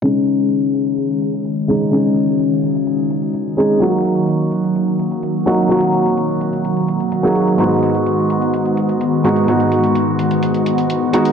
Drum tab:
HH |xxxxx-xxxxxxx-xx|xxxxx-xxxxxxx-xx|xxxxx-xxxxxxx-xx|xxxxx-xxxxxxx-xx|

HH |xxxxx-xxxxxxx-xx|xxxxx-xxxxxxx-xx|